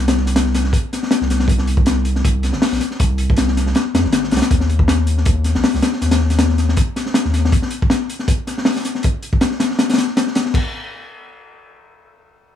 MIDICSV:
0, 0, Header, 1, 3, 480
1, 0, Start_track
1, 0, Tempo, 377358
1, 1891, Time_signature, 4, 2, 24, 8
1, 15973, End_track
2, 0, Start_track
2, 0, Title_t, "Sub bass"
2, 0, Program_c, 0, 38
2, 0, Note_on_c, 0, 36, 100
2, 914, Note_off_c, 0, 36, 0
2, 1542, Note_on_c, 0, 36, 100
2, 1875, Note_off_c, 0, 36, 0
2, 1880, Note_on_c, 0, 36, 101
2, 2828, Note_off_c, 0, 36, 0
2, 2857, Note_on_c, 0, 36, 92
2, 3204, Note_off_c, 0, 36, 0
2, 3223, Note_on_c, 0, 31, 92
2, 3322, Note_off_c, 0, 31, 0
2, 3463, Note_on_c, 0, 34, 95
2, 3561, Note_off_c, 0, 34, 0
2, 3815, Note_on_c, 0, 36, 99
2, 4756, Note_off_c, 0, 36, 0
2, 5013, Note_on_c, 0, 41, 85
2, 5143, Note_on_c, 0, 31, 86
2, 5162, Note_off_c, 0, 41, 0
2, 5493, Note_on_c, 0, 36, 99
2, 5512, Note_off_c, 0, 31, 0
2, 5610, Note_off_c, 0, 36, 0
2, 5733, Note_on_c, 0, 39, 101
2, 6675, Note_off_c, 0, 39, 0
2, 6693, Note_on_c, 0, 39, 92
2, 7041, Note_off_c, 0, 39, 0
2, 7063, Note_on_c, 0, 34, 92
2, 7162, Note_off_c, 0, 34, 0
2, 7302, Note_on_c, 0, 37, 97
2, 7401, Note_off_c, 0, 37, 0
2, 7652, Note_on_c, 0, 39, 102
2, 8594, Note_off_c, 0, 39, 0
2, 9223, Note_on_c, 0, 39, 102
2, 9555, Note_off_c, 0, 39, 0
2, 15973, End_track
3, 0, Start_track
3, 0, Title_t, "Drums"
3, 100, Note_on_c, 9, 42, 75
3, 102, Note_on_c, 9, 38, 112
3, 218, Note_off_c, 9, 38, 0
3, 218, Note_on_c, 9, 38, 47
3, 227, Note_off_c, 9, 42, 0
3, 332, Note_off_c, 9, 38, 0
3, 332, Note_on_c, 9, 38, 44
3, 346, Note_on_c, 9, 42, 61
3, 456, Note_off_c, 9, 38, 0
3, 456, Note_on_c, 9, 38, 119
3, 457, Note_off_c, 9, 42, 0
3, 457, Note_on_c, 9, 42, 89
3, 583, Note_off_c, 9, 38, 0
3, 584, Note_off_c, 9, 42, 0
3, 584, Note_on_c, 9, 38, 45
3, 693, Note_on_c, 9, 42, 75
3, 696, Note_off_c, 9, 38, 0
3, 696, Note_on_c, 9, 38, 56
3, 815, Note_off_c, 9, 38, 0
3, 815, Note_on_c, 9, 38, 43
3, 820, Note_off_c, 9, 42, 0
3, 927, Note_on_c, 9, 36, 100
3, 936, Note_on_c, 9, 42, 80
3, 943, Note_off_c, 9, 38, 0
3, 1054, Note_off_c, 9, 36, 0
3, 1064, Note_off_c, 9, 42, 0
3, 1181, Note_on_c, 9, 38, 45
3, 1181, Note_on_c, 9, 42, 65
3, 1307, Note_off_c, 9, 38, 0
3, 1307, Note_on_c, 9, 38, 46
3, 1309, Note_off_c, 9, 42, 0
3, 1409, Note_off_c, 9, 38, 0
3, 1409, Note_on_c, 9, 38, 109
3, 1420, Note_on_c, 9, 42, 89
3, 1536, Note_off_c, 9, 38, 0
3, 1545, Note_on_c, 9, 38, 56
3, 1547, Note_off_c, 9, 42, 0
3, 1655, Note_on_c, 9, 42, 64
3, 1657, Note_off_c, 9, 38, 0
3, 1657, Note_on_c, 9, 38, 53
3, 1775, Note_off_c, 9, 38, 0
3, 1775, Note_on_c, 9, 38, 55
3, 1782, Note_off_c, 9, 42, 0
3, 1880, Note_on_c, 9, 36, 109
3, 1899, Note_on_c, 9, 42, 78
3, 1902, Note_off_c, 9, 38, 0
3, 2007, Note_off_c, 9, 36, 0
3, 2017, Note_on_c, 9, 38, 49
3, 2026, Note_off_c, 9, 42, 0
3, 2130, Note_on_c, 9, 42, 72
3, 2144, Note_off_c, 9, 38, 0
3, 2253, Note_on_c, 9, 36, 96
3, 2257, Note_off_c, 9, 42, 0
3, 2365, Note_on_c, 9, 42, 81
3, 2375, Note_on_c, 9, 38, 109
3, 2380, Note_off_c, 9, 36, 0
3, 2492, Note_off_c, 9, 42, 0
3, 2502, Note_off_c, 9, 38, 0
3, 2607, Note_on_c, 9, 42, 70
3, 2734, Note_off_c, 9, 42, 0
3, 2743, Note_on_c, 9, 38, 41
3, 2857, Note_on_c, 9, 36, 106
3, 2860, Note_on_c, 9, 42, 94
3, 2870, Note_off_c, 9, 38, 0
3, 2984, Note_off_c, 9, 36, 0
3, 2987, Note_off_c, 9, 42, 0
3, 3092, Note_on_c, 9, 42, 72
3, 3105, Note_on_c, 9, 38, 38
3, 3214, Note_off_c, 9, 38, 0
3, 3214, Note_on_c, 9, 38, 50
3, 3219, Note_off_c, 9, 42, 0
3, 3330, Note_off_c, 9, 38, 0
3, 3330, Note_on_c, 9, 38, 109
3, 3338, Note_on_c, 9, 46, 89
3, 3457, Note_off_c, 9, 38, 0
3, 3463, Note_on_c, 9, 38, 64
3, 3465, Note_off_c, 9, 46, 0
3, 3569, Note_off_c, 9, 38, 0
3, 3569, Note_on_c, 9, 38, 41
3, 3572, Note_on_c, 9, 42, 70
3, 3696, Note_off_c, 9, 38, 0
3, 3699, Note_off_c, 9, 42, 0
3, 3700, Note_on_c, 9, 38, 36
3, 3811, Note_on_c, 9, 42, 92
3, 3815, Note_on_c, 9, 36, 120
3, 3827, Note_off_c, 9, 38, 0
3, 3938, Note_off_c, 9, 42, 0
3, 3942, Note_off_c, 9, 36, 0
3, 4046, Note_on_c, 9, 42, 73
3, 4173, Note_off_c, 9, 42, 0
3, 4194, Note_on_c, 9, 36, 96
3, 4281, Note_on_c, 9, 42, 92
3, 4296, Note_on_c, 9, 38, 104
3, 4321, Note_off_c, 9, 36, 0
3, 4408, Note_off_c, 9, 42, 0
3, 4423, Note_off_c, 9, 38, 0
3, 4427, Note_on_c, 9, 38, 54
3, 4538, Note_off_c, 9, 38, 0
3, 4538, Note_on_c, 9, 38, 51
3, 4543, Note_on_c, 9, 42, 68
3, 4663, Note_off_c, 9, 38, 0
3, 4663, Note_on_c, 9, 38, 49
3, 4670, Note_off_c, 9, 42, 0
3, 4767, Note_on_c, 9, 42, 74
3, 4778, Note_off_c, 9, 38, 0
3, 4778, Note_on_c, 9, 38, 97
3, 4894, Note_off_c, 9, 42, 0
3, 4906, Note_off_c, 9, 38, 0
3, 5020, Note_on_c, 9, 42, 75
3, 5021, Note_on_c, 9, 38, 107
3, 5146, Note_off_c, 9, 38, 0
3, 5146, Note_on_c, 9, 38, 45
3, 5147, Note_off_c, 9, 42, 0
3, 5246, Note_on_c, 9, 42, 95
3, 5249, Note_off_c, 9, 38, 0
3, 5249, Note_on_c, 9, 38, 112
3, 5373, Note_off_c, 9, 42, 0
3, 5376, Note_off_c, 9, 38, 0
3, 5389, Note_on_c, 9, 38, 53
3, 5486, Note_on_c, 9, 42, 62
3, 5497, Note_off_c, 9, 38, 0
3, 5497, Note_on_c, 9, 38, 96
3, 5551, Note_off_c, 9, 42, 0
3, 5551, Note_on_c, 9, 42, 74
3, 5561, Note_off_c, 9, 38, 0
3, 5561, Note_on_c, 9, 38, 99
3, 5617, Note_off_c, 9, 42, 0
3, 5617, Note_on_c, 9, 42, 77
3, 5623, Note_off_c, 9, 38, 0
3, 5623, Note_on_c, 9, 38, 99
3, 5733, Note_on_c, 9, 36, 112
3, 5736, Note_off_c, 9, 42, 0
3, 5736, Note_on_c, 9, 42, 87
3, 5750, Note_off_c, 9, 38, 0
3, 5857, Note_on_c, 9, 38, 49
3, 5860, Note_off_c, 9, 36, 0
3, 5863, Note_off_c, 9, 42, 0
3, 5973, Note_on_c, 9, 42, 71
3, 5984, Note_off_c, 9, 38, 0
3, 6095, Note_on_c, 9, 36, 93
3, 6100, Note_off_c, 9, 42, 0
3, 6207, Note_on_c, 9, 38, 126
3, 6220, Note_on_c, 9, 42, 94
3, 6222, Note_off_c, 9, 36, 0
3, 6334, Note_off_c, 9, 38, 0
3, 6347, Note_off_c, 9, 42, 0
3, 6448, Note_on_c, 9, 42, 70
3, 6575, Note_off_c, 9, 42, 0
3, 6585, Note_on_c, 9, 38, 35
3, 6682, Note_on_c, 9, 42, 83
3, 6693, Note_on_c, 9, 36, 118
3, 6712, Note_off_c, 9, 38, 0
3, 6810, Note_off_c, 9, 42, 0
3, 6820, Note_off_c, 9, 36, 0
3, 6924, Note_on_c, 9, 42, 63
3, 6930, Note_on_c, 9, 38, 39
3, 7051, Note_off_c, 9, 42, 0
3, 7057, Note_off_c, 9, 38, 0
3, 7058, Note_on_c, 9, 38, 56
3, 7167, Note_on_c, 9, 46, 85
3, 7170, Note_off_c, 9, 38, 0
3, 7170, Note_on_c, 9, 38, 112
3, 7294, Note_off_c, 9, 46, 0
3, 7298, Note_off_c, 9, 38, 0
3, 7311, Note_on_c, 9, 38, 55
3, 7407, Note_on_c, 9, 42, 77
3, 7410, Note_off_c, 9, 38, 0
3, 7410, Note_on_c, 9, 38, 106
3, 7534, Note_off_c, 9, 42, 0
3, 7537, Note_off_c, 9, 38, 0
3, 7543, Note_on_c, 9, 38, 49
3, 7651, Note_off_c, 9, 38, 0
3, 7651, Note_on_c, 9, 38, 52
3, 7655, Note_on_c, 9, 42, 62
3, 7774, Note_off_c, 9, 42, 0
3, 7774, Note_on_c, 9, 42, 86
3, 7777, Note_off_c, 9, 38, 0
3, 7777, Note_on_c, 9, 38, 104
3, 7886, Note_off_c, 9, 38, 0
3, 7886, Note_on_c, 9, 38, 49
3, 7902, Note_off_c, 9, 42, 0
3, 8013, Note_off_c, 9, 38, 0
3, 8014, Note_on_c, 9, 42, 60
3, 8016, Note_on_c, 9, 38, 45
3, 8123, Note_off_c, 9, 38, 0
3, 8123, Note_off_c, 9, 42, 0
3, 8123, Note_on_c, 9, 38, 124
3, 8123, Note_on_c, 9, 42, 80
3, 8250, Note_off_c, 9, 38, 0
3, 8250, Note_off_c, 9, 42, 0
3, 8260, Note_on_c, 9, 38, 49
3, 8371, Note_off_c, 9, 38, 0
3, 8371, Note_on_c, 9, 38, 48
3, 8371, Note_on_c, 9, 42, 64
3, 8498, Note_off_c, 9, 38, 0
3, 8498, Note_off_c, 9, 42, 0
3, 8507, Note_on_c, 9, 38, 50
3, 8607, Note_on_c, 9, 42, 87
3, 8614, Note_on_c, 9, 36, 113
3, 8634, Note_off_c, 9, 38, 0
3, 8734, Note_off_c, 9, 42, 0
3, 8742, Note_off_c, 9, 36, 0
3, 8855, Note_on_c, 9, 38, 50
3, 8858, Note_on_c, 9, 42, 73
3, 8980, Note_off_c, 9, 38, 0
3, 8980, Note_on_c, 9, 38, 47
3, 8985, Note_off_c, 9, 42, 0
3, 9085, Note_off_c, 9, 38, 0
3, 9085, Note_on_c, 9, 38, 108
3, 9094, Note_on_c, 9, 42, 94
3, 9212, Note_off_c, 9, 38, 0
3, 9219, Note_on_c, 9, 38, 51
3, 9221, Note_off_c, 9, 42, 0
3, 9327, Note_off_c, 9, 38, 0
3, 9327, Note_on_c, 9, 38, 49
3, 9334, Note_on_c, 9, 42, 73
3, 9454, Note_off_c, 9, 38, 0
3, 9461, Note_off_c, 9, 42, 0
3, 9474, Note_on_c, 9, 38, 57
3, 9570, Note_on_c, 9, 36, 111
3, 9572, Note_on_c, 9, 42, 82
3, 9601, Note_off_c, 9, 38, 0
3, 9697, Note_off_c, 9, 36, 0
3, 9698, Note_on_c, 9, 38, 49
3, 9700, Note_off_c, 9, 42, 0
3, 9801, Note_on_c, 9, 42, 70
3, 9825, Note_off_c, 9, 38, 0
3, 9928, Note_off_c, 9, 42, 0
3, 9951, Note_on_c, 9, 36, 96
3, 10048, Note_on_c, 9, 38, 123
3, 10062, Note_on_c, 9, 42, 79
3, 10078, Note_off_c, 9, 36, 0
3, 10175, Note_off_c, 9, 38, 0
3, 10189, Note_off_c, 9, 42, 0
3, 10297, Note_on_c, 9, 42, 65
3, 10422, Note_on_c, 9, 38, 41
3, 10425, Note_off_c, 9, 42, 0
3, 10530, Note_on_c, 9, 36, 112
3, 10530, Note_on_c, 9, 42, 91
3, 10549, Note_off_c, 9, 38, 0
3, 10657, Note_off_c, 9, 36, 0
3, 10657, Note_off_c, 9, 42, 0
3, 10775, Note_on_c, 9, 38, 41
3, 10778, Note_on_c, 9, 42, 69
3, 10902, Note_off_c, 9, 38, 0
3, 10905, Note_off_c, 9, 42, 0
3, 10909, Note_on_c, 9, 38, 49
3, 11004, Note_off_c, 9, 38, 0
3, 11004, Note_on_c, 9, 38, 121
3, 11012, Note_on_c, 9, 46, 86
3, 11131, Note_off_c, 9, 38, 0
3, 11139, Note_off_c, 9, 46, 0
3, 11144, Note_on_c, 9, 38, 62
3, 11255, Note_off_c, 9, 38, 0
3, 11255, Note_on_c, 9, 38, 39
3, 11255, Note_on_c, 9, 42, 65
3, 11382, Note_off_c, 9, 42, 0
3, 11383, Note_off_c, 9, 38, 0
3, 11383, Note_on_c, 9, 38, 42
3, 11486, Note_on_c, 9, 42, 79
3, 11503, Note_on_c, 9, 36, 100
3, 11510, Note_off_c, 9, 38, 0
3, 11613, Note_off_c, 9, 42, 0
3, 11631, Note_off_c, 9, 36, 0
3, 11735, Note_on_c, 9, 42, 68
3, 11862, Note_off_c, 9, 42, 0
3, 11864, Note_on_c, 9, 36, 98
3, 11969, Note_on_c, 9, 42, 84
3, 11972, Note_on_c, 9, 38, 125
3, 11991, Note_off_c, 9, 36, 0
3, 12096, Note_off_c, 9, 38, 0
3, 12096, Note_off_c, 9, 42, 0
3, 12096, Note_on_c, 9, 38, 52
3, 12209, Note_off_c, 9, 38, 0
3, 12209, Note_on_c, 9, 38, 95
3, 12213, Note_on_c, 9, 42, 74
3, 12336, Note_off_c, 9, 38, 0
3, 12340, Note_off_c, 9, 42, 0
3, 12348, Note_on_c, 9, 38, 50
3, 12449, Note_off_c, 9, 38, 0
3, 12449, Note_on_c, 9, 38, 110
3, 12453, Note_on_c, 9, 42, 72
3, 12576, Note_off_c, 9, 38, 0
3, 12581, Note_off_c, 9, 42, 0
3, 12587, Note_on_c, 9, 38, 85
3, 12587, Note_on_c, 9, 42, 69
3, 12637, Note_off_c, 9, 38, 0
3, 12637, Note_on_c, 9, 38, 96
3, 12643, Note_off_c, 9, 42, 0
3, 12643, Note_on_c, 9, 42, 71
3, 12695, Note_off_c, 9, 38, 0
3, 12695, Note_on_c, 9, 38, 102
3, 12696, Note_off_c, 9, 42, 0
3, 12696, Note_on_c, 9, 42, 85
3, 12814, Note_off_c, 9, 38, 0
3, 12814, Note_on_c, 9, 38, 44
3, 12823, Note_off_c, 9, 42, 0
3, 12934, Note_on_c, 9, 42, 87
3, 12935, Note_off_c, 9, 38, 0
3, 12935, Note_on_c, 9, 38, 127
3, 13062, Note_off_c, 9, 42, 0
3, 13063, Note_off_c, 9, 38, 0
3, 13066, Note_on_c, 9, 38, 55
3, 13169, Note_on_c, 9, 42, 86
3, 13176, Note_off_c, 9, 38, 0
3, 13176, Note_on_c, 9, 38, 110
3, 13297, Note_off_c, 9, 42, 0
3, 13303, Note_off_c, 9, 38, 0
3, 13303, Note_on_c, 9, 38, 56
3, 13408, Note_on_c, 9, 36, 104
3, 13415, Note_on_c, 9, 49, 90
3, 13430, Note_off_c, 9, 38, 0
3, 13535, Note_off_c, 9, 36, 0
3, 13542, Note_off_c, 9, 49, 0
3, 15973, End_track
0, 0, End_of_file